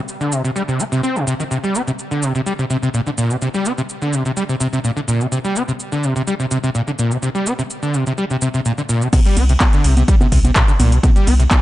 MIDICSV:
0, 0, Header, 1, 4, 480
1, 0, Start_track
1, 0, Tempo, 476190
1, 1521, Time_signature, 4, 2, 24, 8
1, 11710, End_track
2, 0, Start_track
2, 0, Title_t, "Acid bass"
2, 0, Program_c, 0, 38
2, 208, Note_on_c, 0, 50, 74
2, 320, Note_on_c, 0, 48, 96
2, 335, Note_off_c, 0, 50, 0
2, 425, Note_off_c, 0, 48, 0
2, 447, Note_on_c, 0, 48, 73
2, 510, Note_off_c, 0, 48, 0
2, 562, Note_on_c, 0, 55, 83
2, 631, Note_off_c, 0, 55, 0
2, 688, Note_on_c, 0, 48, 74
2, 801, Note_on_c, 0, 60, 98
2, 816, Note_off_c, 0, 48, 0
2, 843, Note_off_c, 0, 60, 0
2, 927, Note_on_c, 0, 48, 93
2, 1021, Note_off_c, 0, 48, 0
2, 1041, Note_on_c, 0, 60, 82
2, 1168, Note_on_c, 0, 48, 76
2, 1183, Note_off_c, 0, 60, 0
2, 1262, Note_off_c, 0, 48, 0
2, 1281, Note_on_c, 0, 48, 101
2, 1351, Note_off_c, 0, 48, 0
2, 1409, Note_on_c, 0, 51, 73
2, 1446, Note_off_c, 0, 51, 0
2, 1523, Note_on_c, 0, 48, 82
2, 1591, Note_off_c, 0, 48, 0
2, 1649, Note_on_c, 0, 55, 73
2, 1763, Note_on_c, 0, 60, 72
2, 1779, Note_off_c, 0, 55, 0
2, 1832, Note_off_c, 0, 60, 0
2, 1890, Note_on_c, 0, 48, 75
2, 1926, Note_off_c, 0, 48, 0
2, 2129, Note_on_c, 0, 50, 76
2, 2243, Note_on_c, 0, 48, 100
2, 2258, Note_off_c, 0, 50, 0
2, 2346, Note_off_c, 0, 48, 0
2, 2368, Note_on_c, 0, 48, 72
2, 2430, Note_off_c, 0, 48, 0
2, 2483, Note_on_c, 0, 55, 82
2, 2551, Note_off_c, 0, 55, 0
2, 2609, Note_on_c, 0, 48, 75
2, 2671, Note_off_c, 0, 48, 0
2, 2722, Note_on_c, 0, 48, 102
2, 2791, Note_off_c, 0, 48, 0
2, 2849, Note_on_c, 0, 48, 92
2, 2911, Note_off_c, 0, 48, 0
2, 2963, Note_on_c, 0, 46, 101
2, 3032, Note_off_c, 0, 46, 0
2, 3091, Note_on_c, 0, 50, 77
2, 3127, Note_off_c, 0, 50, 0
2, 3204, Note_on_c, 0, 46, 102
2, 3329, Note_on_c, 0, 48, 74
2, 3344, Note_off_c, 0, 46, 0
2, 3391, Note_off_c, 0, 48, 0
2, 3445, Note_on_c, 0, 48, 85
2, 3512, Note_off_c, 0, 48, 0
2, 3570, Note_on_c, 0, 55, 76
2, 3685, Note_on_c, 0, 60, 73
2, 3700, Note_off_c, 0, 55, 0
2, 3752, Note_off_c, 0, 60, 0
2, 3810, Note_on_c, 0, 48, 82
2, 3846, Note_off_c, 0, 48, 0
2, 4050, Note_on_c, 0, 50, 72
2, 4162, Note_on_c, 0, 48, 98
2, 4177, Note_off_c, 0, 50, 0
2, 4266, Note_off_c, 0, 48, 0
2, 4287, Note_on_c, 0, 48, 72
2, 4350, Note_off_c, 0, 48, 0
2, 4401, Note_on_c, 0, 55, 81
2, 4470, Note_off_c, 0, 55, 0
2, 4527, Note_on_c, 0, 48, 75
2, 4590, Note_off_c, 0, 48, 0
2, 4641, Note_on_c, 0, 48, 99
2, 4710, Note_off_c, 0, 48, 0
2, 4766, Note_on_c, 0, 48, 94
2, 4830, Note_off_c, 0, 48, 0
2, 4880, Note_on_c, 0, 46, 96
2, 4950, Note_off_c, 0, 46, 0
2, 5006, Note_on_c, 0, 50, 77
2, 5044, Note_off_c, 0, 50, 0
2, 5120, Note_on_c, 0, 46, 98
2, 5246, Note_on_c, 0, 48, 73
2, 5261, Note_off_c, 0, 46, 0
2, 5309, Note_off_c, 0, 48, 0
2, 5361, Note_on_c, 0, 48, 81
2, 5431, Note_off_c, 0, 48, 0
2, 5487, Note_on_c, 0, 55, 75
2, 5602, Note_on_c, 0, 60, 74
2, 5617, Note_off_c, 0, 55, 0
2, 5671, Note_off_c, 0, 60, 0
2, 5728, Note_on_c, 0, 48, 77
2, 5765, Note_off_c, 0, 48, 0
2, 5969, Note_on_c, 0, 50, 73
2, 6084, Note_on_c, 0, 48, 97
2, 6099, Note_off_c, 0, 50, 0
2, 6187, Note_off_c, 0, 48, 0
2, 6208, Note_on_c, 0, 48, 72
2, 6270, Note_off_c, 0, 48, 0
2, 6323, Note_on_c, 0, 55, 85
2, 6391, Note_off_c, 0, 55, 0
2, 6447, Note_on_c, 0, 48, 72
2, 6510, Note_off_c, 0, 48, 0
2, 6564, Note_on_c, 0, 48, 98
2, 6632, Note_off_c, 0, 48, 0
2, 6689, Note_on_c, 0, 48, 94
2, 6751, Note_off_c, 0, 48, 0
2, 6803, Note_on_c, 0, 46, 104
2, 6871, Note_off_c, 0, 46, 0
2, 6929, Note_on_c, 0, 50, 74
2, 6966, Note_off_c, 0, 50, 0
2, 7044, Note_on_c, 0, 46, 96
2, 7168, Note_on_c, 0, 48, 72
2, 7184, Note_off_c, 0, 46, 0
2, 7231, Note_off_c, 0, 48, 0
2, 7281, Note_on_c, 0, 48, 81
2, 7351, Note_off_c, 0, 48, 0
2, 7406, Note_on_c, 0, 55, 73
2, 7522, Note_on_c, 0, 60, 75
2, 7537, Note_off_c, 0, 55, 0
2, 7591, Note_off_c, 0, 60, 0
2, 7649, Note_on_c, 0, 48, 78
2, 7686, Note_off_c, 0, 48, 0
2, 7889, Note_on_c, 0, 50, 74
2, 8003, Note_on_c, 0, 48, 102
2, 8019, Note_off_c, 0, 50, 0
2, 8106, Note_off_c, 0, 48, 0
2, 8131, Note_on_c, 0, 48, 73
2, 8192, Note_off_c, 0, 48, 0
2, 8245, Note_on_c, 0, 55, 84
2, 8312, Note_off_c, 0, 55, 0
2, 8372, Note_on_c, 0, 48, 72
2, 8432, Note_off_c, 0, 48, 0
2, 8484, Note_on_c, 0, 48, 103
2, 8552, Note_off_c, 0, 48, 0
2, 8610, Note_on_c, 0, 48, 93
2, 8672, Note_off_c, 0, 48, 0
2, 8723, Note_on_c, 0, 46, 103
2, 8792, Note_off_c, 0, 46, 0
2, 8850, Note_on_c, 0, 50, 76
2, 8886, Note_off_c, 0, 50, 0
2, 8963, Note_on_c, 0, 46, 96
2, 9089, Note_on_c, 0, 48, 75
2, 9104, Note_off_c, 0, 46, 0
2, 9151, Note_off_c, 0, 48, 0
2, 9204, Note_on_c, 0, 48, 85
2, 9272, Note_off_c, 0, 48, 0
2, 9331, Note_on_c, 0, 55, 81
2, 9445, Note_on_c, 0, 60, 76
2, 9460, Note_off_c, 0, 55, 0
2, 9512, Note_off_c, 0, 60, 0
2, 9569, Note_on_c, 0, 48, 82
2, 9606, Note_off_c, 0, 48, 0
2, 9812, Note_on_c, 0, 50, 76
2, 9924, Note_on_c, 0, 48, 104
2, 9939, Note_off_c, 0, 50, 0
2, 10026, Note_off_c, 0, 48, 0
2, 10050, Note_on_c, 0, 48, 77
2, 10111, Note_off_c, 0, 48, 0
2, 10164, Note_on_c, 0, 55, 91
2, 10232, Note_off_c, 0, 55, 0
2, 10290, Note_on_c, 0, 48, 79
2, 10351, Note_off_c, 0, 48, 0
2, 10404, Note_on_c, 0, 48, 108
2, 10472, Note_off_c, 0, 48, 0
2, 10528, Note_on_c, 0, 48, 97
2, 10590, Note_off_c, 0, 48, 0
2, 10642, Note_on_c, 0, 46, 106
2, 10711, Note_off_c, 0, 46, 0
2, 10768, Note_on_c, 0, 50, 79
2, 10805, Note_off_c, 0, 50, 0
2, 10881, Note_on_c, 0, 46, 105
2, 11006, Note_on_c, 0, 48, 77
2, 11021, Note_off_c, 0, 46, 0
2, 11069, Note_off_c, 0, 48, 0
2, 11121, Note_on_c, 0, 48, 87
2, 11190, Note_off_c, 0, 48, 0
2, 11246, Note_on_c, 0, 55, 78
2, 11361, Note_on_c, 0, 60, 78
2, 11376, Note_off_c, 0, 55, 0
2, 11430, Note_off_c, 0, 60, 0
2, 11486, Note_on_c, 0, 48, 79
2, 11524, Note_off_c, 0, 48, 0
2, 11710, End_track
3, 0, Start_track
3, 0, Title_t, "Analog synth bass"
3, 0, Program_c, 1, 38
3, 9442, Note_on_c, 1, 36, 103
3, 9637, Note_off_c, 1, 36, 0
3, 9922, Note_on_c, 1, 36, 100
3, 10117, Note_off_c, 1, 36, 0
3, 10402, Note_on_c, 1, 36, 86
3, 10597, Note_off_c, 1, 36, 0
3, 10882, Note_on_c, 1, 36, 89
3, 11077, Note_off_c, 1, 36, 0
3, 11362, Note_on_c, 1, 36, 101
3, 11557, Note_off_c, 1, 36, 0
3, 11710, End_track
4, 0, Start_track
4, 0, Title_t, "Drums"
4, 85, Note_on_c, 9, 82, 41
4, 186, Note_off_c, 9, 82, 0
4, 211, Note_on_c, 9, 82, 20
4, 312, Note_off_c, 9, 82, 0
4, 324, Note_on_c, 9, 82, 71
4, 425, Note_off_c, 9, 82, 0
4, 451, Note_on_c, 9, 82, 31
4, 552, Note_off_c, 9, 82, 0
4, 566, Note_on_c, 9, 82, 40
4, 667, Note_off_c, 9, 82, 0
4, 691, Note_on_c, 9, 82, 20
4, 792, Note_off_c, 9, 82, 0
4, 805, Note_on_c, 9, 82, 70
4, 906, Note_off_c, 9, 82, 0
4, 931, Note_on_c, 9, 82, 31
4, 1032, Note_off_c, 9, 82, 0
4, 1046, Note_on_c, 9, 82, 40
4, 1147, Note_off_c, 9, 82, 0
4, 1172, Note_on_c, 9, 82, 19
4, 1273, Note_off_c, 9, 82, 0
4, 1286, Note_on_c, 9, 82, 71
4, 1387, Note_off_c, 9, 82, 0
4, 1412, Note_on_c, 9, 82, 31
4, 1513, Note_off_c, 9, 82, 0
4, 1526, Note_on_c, 9, 82, 41
4, 1627, Note_off_c, 9, 82, 0
4, 1652, Note_on_c, 9, 82, 21
4, 1753, Note_off_c, 9, 82, 0
4, 1766, Note_on_c, 9, 82, 77
4, 1866, Note_off_c, 9, 82, 0
4, 1892, Note_on_c, 9, 82, 32
4, 1993, Note_off_c, 9, 82, 0
4, 2006, Note_on_c, 9, 82, 42
4, 2107, Note_off_c, 9, 82, 0
4, 2132, Note_on_c, 9, 82, 21
4, 2232, Note_off_c, 9, 82, 0
4, 2245, Note_on_c, 9, 82, 73
4, 2346, Note_off_c, 9, 82, 0
4, 2371, Note_on_c, 9, 82, 33
4, 2472, Note_off_c, 9, 82, 0
4, 2485, Note_on_c, 9, 82, 41
4, 2586, Note_off_c, 9, 82, 0
4, 2611, Note_on_c, 9, 82, 22
4, 2712, Note_off_c, 9, 82, 0
4, 2726, Note_on_c, 9, 82, 74
4, 2827, Note_off_c, 9, 82, 0
4, 2852, Note_on_c, 9, 82, 31
4, 2953, Note_off_c, 9, 82, 0
4, 2965, Note_on_c, 9, 82, 41
4, 3066, Note_off_c, 9, 82, 0
4, 3091, Note_on_c, 9, 82, 21
4, 3192, Note_off_c, 9, 82, 0
4, 3205, Note_on_c, 9, 82, 72
4, 3306, Note_off_c, 9, 82, 0
4, 3331, Note_on_c, 9, 82, 32
4, 3432, Note_off_c, 9, 82, 0
4, 3445, Note_on_c, 9, 82, 42
4, 3545, Note_off_c, 9, 82, 0
4, 3571, Note_on_c, 9, 82, 21
4, 3672, Note_off_c, 9, 82, 0
4, 3684, Note_on_c, 9, 82, 77
4, 3785, Note_off_c, 9, 82, 0
4, 3810, Note_on_c, 9, 82, 32
4, 3911, Note_off_c, 9, 82, 0
4, 3925, Note_on_c, 9, 82, 43
4, 4025, Note_off_c, 9, 82, 0
4, 4051, Note_on_c, 9, 82, 21
4, 4152, Note_off_c, 9, 82, 0
4, 4164, Note_on_c, 9, 82, 80
4, 4265, Note_off_c, 9, 82, 0
4, 4290, Note_on_c, 9, 82, 34
4, 4391, Note_off_c, 9, 82, 0
4, 4403, Note_on_c, 9, 82, 45
4, 4504, Note_off_c, 9, 82, 0
4, 4529, Note_on_c, 9, 82, 22
4, 4630, Note_off_c, 9, 82, 0
4, 4643, Note_on_c, 9, 82, 75
4, 4744, Note_off_c, 9, 82, 0
4, 4769, Note_on_c, 9, 82, 34
4, 4870, Note_off_c, 9, 82, 0
4, 4884, Note_on_c, 9, 82, 44
4, 4985, Note_off_c, 9, 82, 0
4, 5010, Note_on_c, 9, 82, 21
4, 5111, Note_off_c, 9, 82, 0
4, 5124, Note_on_c, 9, 82, 72
4, 5225, Note_off_c, 9, 82, 0
4, 5250, Note_on_c, 9, 82, 35
4, 5351, Note_off_c, 9, 82, 0
4, 5364, Note_on_c, 9, 82, 44
4, 5465, Note_off_c, 9, 82, 0
4, 5490, Note_on_c, 9, 82, 22
4, 5591, Note_off_c, 9, 82, 0
4, 5604, Note_on_c, 9, 82, 76
4, 5705, Note_off_c, 9, 82, 0
4, 5731, Note_on_c, 9, 82, 33
4, 5831, Note_off_c, 9, 82, 0
4, 5844, Note_on_c, 9, 82, 43
4, 5944, Note_off_c, 9, 82, 0
4, 5970, Note_on_c, 9, 82, 21
4, 6070, Note_off_c, 9, 82, 0
4, 6084, Note_on_c, 9, 82, 79
4, 6185, Note_off_c, 9, 82, 0
4, 6211, Note_on_c, 9, 82, 33
4, 6312, Note_off_c, 9, 82, 0
4, 6324, Note_on_c, 9, 82, 45
4, 6425, Note_off_c, 9, 82, 0
4, 6451, Note_on_c, 9, 82, 22
4, 6552, Note_off_c, 9, 82, 0
4, 6564, Note_on_c, 9, 82, 74
4, 6665, Note_off_c, 9, 82, 0
4, 6690, Note_on_c, 9, 82, 34
4, 6791, Note_off_c, 9, 82, 0
4, 6804, Note_on_c, 9, 82, 43
4, 6905, Note_off_c, 9, 82, 0
4, 6930, Note_on_c, 9, 82, 22
4, 7031, Note_off_c, 9, 82, 0
4, 7045, Note_on_c, 9, 82, 78
4, 7145, Note_off_c, 9, 82, 0
4, 7171, Note_on_c, 9, 82, 34
4, 7272, Note_off_c, 9, 82, 0
4, 7285, Note_on_c, 9, 82, 44
4, 7386, Note_off_c, 9, 82, 0
4, 7411, Note_on_c, 9, 82, 22
4, 7512, Note_off_c, 9, 82, 0
4, 7525, Note_on_c, 9, 82, 78
4, 7626, Note_off_c, 9, 82, 0
4, 7651, Note_on_c, 9, 82, 32
4, 7752, Note_off_c, 9, 82, 0
4, 7765, Note_on_c, 9, 82, 45
4, 7865, Note_off_c, 9, 82, 0
4, 7890, Note_on_c, 9, 82, 22
4, 7991, Note_off_c, 9, 82, 0
4, 8005, Note_on_c, 9, 82, 74
4, 8106, Note_off_c, 9, 82, 0
4, 8130, Note_on_c, 9, 82, 34
4, 8231, Note_off_c, 9, 82, 0
4, 8244, Note_on_c, 9, 82, 43
4, 8345, Note_off_c, 9, 82, 0
4, 8370, Note_on_c, 9, 82, 22
4, 8471, Note_off_c, 9, 82, 0
4, 8483, Note_on_c, 9, 82, 79
4, 8584, Note_off_c, 9, 82, 0
4, 8610, Note_on_c, 9, 82, 34
4, 8711, Note_off_c, 9, 82, 0
4, 8724, Note_on_c, 9, 82, 43
4, 8825, Note_off_c, 9, 82, 0
4, 8849, Note_on_c, 9, 82, 22
4, 8950, Note_off_c, 9, 82, 0
4, 8964, Note_on_c, 9, 82, 75
4, 9065, Note_off_c, 9, 82, 0
4, 9090, Note_on_c, 9, 82, 33
4, 9191, Note_off_c, 9, 82, 0
4, 9202, Note_on_c, 9, 36, 122
4, 9202, Note_on_c, 9, 42, 86
4, 9202, Note_on_c, 9, 49, 110
4, 9202, Note_on_c, 9, 51, 53
4, 9202, Note_on_c, 9, 63, 57
4, 9204, Note_on_c, 9, 82, 46
4, 9302, Note_off_c, 9, 42, 0
4, 9302, Note_off_c, 9, 49, 0
4, 9302, Note_off_c, 9, 51, 0
4, 9302, Note_off_c, 9, 63, 0
4, 9303, Note_off_c, 9, 36, 0
4, 9305, Note_off_c, 9, 82, 0
4, 9328, Note_on_c, 9, 42, 38
4, 9331, Note_on_c, 9, 82, 32
4, 9429, Note_off_c, 9, 42, 0
4, 9432, Note_off_c, 9, 82, 0
4, 9442, Note_on_c, 9, 46, 110
4, 9442, Note_on_c, 9, 51, 80
4, 9442, Note_on_c, 9, 63, 39
4, 9445, Note_on_c, 9, 82, 84
4, 9543, Note_off_c, 9, 46, 0
4, 9543, Note_off_c, 9, 51, 0
4, 9543, Note_off_c, 9, 63, 0
4, 9545, Note_off_c, 9, 82, 0
4, 9568, Note_on_c, 9, 42, 56
4, 9570, Note_on_c, 9, 82, 35
4, 9669, Note_off_c, 9, 42, 0
4, 9671, Note_off_c, 9, 82, 0
4, 9682, Note_on_c, 9, 36, 120
4, 9682, Note_on_c, 9, 42, 84
4, 9682, Note_on_c, 9, 51, 57
4, 9682, Note_on_c, 9, 63, 58
4, 9683, Note_on_c, 9, 39, 121
4, 9685, Note_on_c, 9, 82, 46
4, 9783, Note_off_c, 9, 36, 0
4, 9783, Note_off_c, 9, 42, 0
4, 9783, Note_off_c, 9, 51, 0
4, 9783, Note_off_c, 9, 63, 0
4, 9784, Note_off_c, 9, 39, 0
4, 9785, Note_off_c, 9, 82, 0
4, 9808, Note_on_c, 9, 42, 39
4, 9811, Note_on_c, 9, 82, 32
4, 9909, Note_off_c, 9, 42, 0
4, 9911, Note_off_c, 9, 82, 0
4, 9922, Note_on_c, 9, 46, 107
4, 9922, Note_on_c, 9, 51, 78
4, 9924, Note_on_c, 9, 82, 78
4, 10023, Note_off_c, 9, 46, 0
4, 10023, Note_off_c, 9, 51, 0
4, 10025, Note_off_c, 9, 82, 0
4, 10048, Note_on_c, 9, 42, 57
4, 10048, Note_on_c, 9, 63, 38
4, 10051, Note_on_c, 9, 82, 37
4, 10149, Note_off_c, 9, 42, 0
4, 10149, Note_off_c, 9, 63, 0
4, 10152, Note_off_c, 9, 82, 0
4, 10162, Note_on_c, 9, 36, 127
4, 10163, Note_on_c, 9, 42, 82
4, 10163, Note_on_c, 9, 51, 55
4, 10165, Note_on_c, 9, 82, 47
4, 10263, Note_off_c, 9, 36, 0
4, 10263, Note_off_c, 9, 42, 0
4, 10263, Note_off_c, 9, 51, 0
4, 10266, Note_off_c, 9, 82, 0
4, 10289, Note_on_c, 9, 63, 60
4, 10292, Note_on_c, 9, 82, 31
4, 10390, Note_off_c, 9, 63, 0
4, 10392, Note_off_c, 9, 82, 0
4, 10402, Note_on_c, 9, 36, 64
4, 10403, Note_on_c, 9, 46, 109
4, 10403, Note_on_c, 9, 51, 73
4, 10405, Note_on_c, 9, 82, 78
4, 10503, Note_off_c, 9, 36, 0
4, 10504, Note_off_c, 9, 46, 0
4, 10504, Note_off_c, 9, 51, 0
4, 10506, Note_off_c, 9, 82, 0
4, 10530, Note_on_c, 9, 42, 57
4, 10530, Note_on_c, 9, 63, 38
4, 10532, Note_on_c, 9, 82, 35
4, 10630, Note_off_c, 9, 42, 0
4, 10630, Note_off_c, 9, 63, 0
4, 10633, Note_off_c, 9, 82, 0
4, 10642, Note_on_c, 9, 36, 120
4, 10643, Note_on_c, 9, 42, 84
4, 10643, Note_on_c, 9, 51, 53
4, 10644, Note_on_c, 9, 39, 122
4, 10645, Note_on_c, 9, 82, 47
4, 10743, Note_off_c, 9, 36, 0
4, 10744, Note_off_c, 9, 42, 0
4, 10744, Note_off_c, 9, 51, 0
4, 10745, Note_off_c, 9, 39, 0
4, 10746, Note_off_c, 9, 82, 0
4, 10770, Note_on_c, 9, 42, 37
4, 10772, Note_on_c, 9, 82, 30
4, 10870, Note_off_c, 9, 42, 0
4, 10873, Note_off_c, 9, 82, 0
4, 10883, Note_on_c, 9, 46, 107
4, 10883, Note_on_c, 9, 51, 75
4, 10883, Note_on_c, 9, 63, 57
4, 10885, Note_on_c, 9, 82, 81
4, 10984, Note_off_c, 9, 46, 0
4, 10984, Note_off_c, 9, 51, 0
4, 10984, Note_off_c, 9, 63, 0
4, 10986, Note_off_c, 9, 82, 0
4, 11009, Note_on_c, 9, 42, 59
4, 11012, Note_on_c, 9, 82, 34
4, 11110, Note_off_c, 9, 42, 0
4, 11113, Note_off_c, 9, 82, 0
4, 11122, Note_on_c, 9, 36, 126
4, 11124, Note_on_c, 9, 42, 82
4, 11124, Note_on_c, 9, 51, 55
4, 11124, Note_on_c, 9, 63, 58
4, 11127, Note_on_c, 9, 82, 45
4, 11223, Note_off_c, 9, 36, 0
4, 11225, Note_off_c, 9, 42, 0
4, 11225, Note_off_c, 9, 51, 0
4, 11225, Note_off_c, 9, 63, 0
4, 11227, Note_off_c, 9, 82, 0
4, 11249, Note_on_c, 9, 42, 37
4, 11252, Note_on_c, 9, 82, 30
4, 11350, Note_off_c, 9, 42, 0
4, 11353, Note_off_c, 9, 82, 0
4, 11363, Note_on_c, 9, 46, 112
4, 11363, Note_on_c, 9, 51, 78
4, 11363, Note_on_c, 9, 63, 42
4, 11365, Note_on_c, 9, 82, 78
4, 11463, Note_off_c, 9, 46, 0
4, 11463, Note_off_c, 9, 51, 0
4, 11463, Note_off_c, 9, 63, 0
4, 11466, Note_off_c, 9, 82, 0
4, 11488, Note_on_c, 9, 42, 55
4, 11491, Note_on_c, 9, 82, 35
4, 11589, Note_off_c, 9, 42, 0
4, 11592, Note_off_c, 9, 82, 0
4, 11602, Note_on_c, 9, 36, 125
4, 11603, Note_on_c, 9, 42, 81
4, 11603, Note_on_c, 9, 51, 53
4, 11603, Note_on_c, 9, 63, 58
4, 11604, Note_on_c, 9, 39, 122
4, 11605, Note_on_c, 9, 82, 42
4, 11703, Note_off_c, 9, 36, 0
4, 11703, Note_off_c, 9, 42, 0
4, 11703, Note_off_c, 9, 51, 0
4, 11703, Note_off_c, 9, 63, 0
4, 11704, Note_off_c, 9, 39, 0
4, 11706, Note_off_c, 9, 82, 0
4, 11710, End_track
0, 0, End_of_file